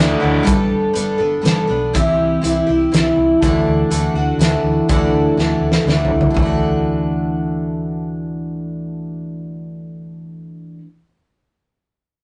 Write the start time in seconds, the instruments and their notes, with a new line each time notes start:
Already playing: picked electric bass D2, overdriven electric guitar D3 A3 D4 E4, twelve-string acoustic guitar E3 A3
0.00 twelve-string acoustic guitar D4 F#4, snare
0.20 picked electric bass D2, twelve-string acoustic guitar A3 D4 F#4, overdriven electric guitar E4
0.43 twelve-string acoustic guitar G3 B3 D4 A4, closed hi-hat
0.47 picked electric bass G1, kick
0.71 picked electric bass G1
0.93 picked electric bass G1, twelve-string acoustic guitar G3 B3 D4 A4, closed hi-hat
1.18 picked electric bass G1, twelve-string acoustic guitar B3 D4 A4
1.42 picked electric bass G1, twelve-string acoustic guitar G3 B3 D4 A4, closed hi-hat
1.46 snare
1.67 picked electric bass B1, twelve-string acoustic guitar B3 D4 A4
1.93 picked electric bass C2, twelve-string acoustic guitar C3 E3 C4 E4 G4, kick, closed hi-hat
2.19 picked electric bass C2
2.41 picked electric bass C2, twelve-string acoustic guitar E3 C4 E4, closed hi-hat
2.46 twelve-string acoustic guitar G4
2.67 picked electric bass C2, twelve-string acoustic guitar C4 E4 G4
2.92 picked electric bass C2, twelve-string acoustic guitar E3 C4 E4 G4, snare, closed hi-hat
3.17 picked electric bass C2
3.42 picked electric bass D2, twelve-string acoustic guitar D3 E3 A3 D4 F#4, kick, closed hi-hat
3.66 picked electric bass D2
3.90 picked electric bass D2, twelve-string acoustic guitar E3 A3 D4 F#4, closed hi-hat
4.14 picked electric bass D2, twelve-string acoustic guitar A3 D4 F#4
4.38 picked electric bass D2, twelve-string acoustic guitar E3 A3 D4 F#4, snare, closed hi-hat
4.63 picked electric bass D2
4.89 picked electric bass D2, twelve-string acoustic guitar D3 E3 A3 D4 F#4, kick, closed hi-hat
5.12 picked electric bass D2
5.37 picked electric bass D2, twelve-string acoustic guitar E3 A3 D4 F#4, snare
5.60 picked electric bass D2
5.72 snare
5.84 picked electric bass D2, twelve-string acoustic guitar E3 A3 D4, snare
5.89 twelve-string acoustic guitar F#4
6.05 floor tom
6.09 picked electric bass D2
6.21 floor tom
6.30 twelve-string acoustic guitar D3 E3
6.36 picked electric bass D2, twelve-string acoustic guitar A3, kick, floor tom
6.42 twelve-string acoustic guitar D4 F#4